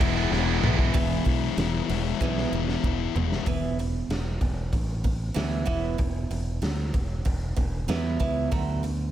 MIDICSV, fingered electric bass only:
0, 0, Header, 1, 2, 480
1, 0, Start_track
1, 0, Tempo, 631579
1, 711, Time_signature, 4, 2, 24, 8
1, 6928, End_track
2, 0, Start_track
2, 0, Title_t, "Fingered electric bass"
2, 0, Program_c, 0, 33
2, 2, Note_on_c, 0, 28, 91
2, 204, Note_off_c, 0, 28, 0
2, 237, Note_on_c, 0, 28, 90
2, 440, Note_off_c, 0, 28, 0
2, 473, Note_on_c, 0, 35, 93
2, 678, Note_off_c, 0, 35, 0
2, 718, Note_on_c, 0, 28, 93
2, 888, Note_off_c, 0, 28, 0
2, 956, Note_on_c, 0, 35, 88
2, 1127, Note_off_c, 0, 35, 0
2, 1193, Note_on_c, 0, 28, 87
2, 1365, Note_off_c, 0, 28, 0
2, 1439, Note_on_c, 0, 28, 91
2, 1608, Note_off_c, 0, 28, 0
2, 1681, Note_on_c, 0, 35, 83
2, 1850, Note_off_c, 0, 35, 0
2, 1914, Note_on_c, 0, 28, 86
2, 2085, Note_off_c, 0, 28, 0
2, 2154, Note_on_c, 0, 28, 77
2, 2325, Note_off_c, 0, 28, 0
2, 2394, Note_on_c, 0, 28, 78
2, 2565, Note_off_c, 0, 28, 0
2, 2632, Note_on_c, 0, 28, 86
2, 3056, Note_off_c, 0, 28, 0
2, 3106, Note_on_c, 0, 28, 77
2, 3320, Note_off_c, 0, 28, 0
2, 3353, Note_on_c, 0, 28, 82
2, 3564, Note_off_c, 0, 28, 0
2, 3592, Note_on_c, 0, 33, 84
2, 4017, Note_off_c, 0, 33, 0
2, 4071, Note_on_c, 0, 38, 79
2, 4284, Note_off_c, 0, 38, 0
2, 4311, Note_on_c, 0, 28, 82
2, 4524, Note_off_c, 0, 28, 0
2, 4556, Note_on_c, 0, 28, 84
2, 4766, Note_off_c, 0, 28, 0
2, 4789, Note_on_c, 0, 28, 84
2, 5003, Note_off_c, 0, 28, 0
2, 5028, Note_on_c, 0, 38, 83
2, 5243, Note_off_c, 0, 38, 0
2, 5278, Note_on_c, 0, 28, 82
2, 5488, Note_off_c, 0, 28, 0
2, 5519, Note_on_c, 0, 28, 87
2, 5729, Note_off_c, 0, 28, 0
2, 5755, Note_on_c, 0, 28, 78
2, 5967, Note_off_c, 0, 28, 0
2, 5984, Note_on_c, 0, 40, 79
2, 6201, Note_off_c, 0, 40, 0
2, 6234, Note_on_c, 0, 37, 82
2, 6447, Note_off_c, 0, 37, 0
2, 6475, Note_on_c, 0, 38, 89
2, 6901, Note_off_c, 0, 38, 0
2, 6928, End_track
0, 0, End_of_file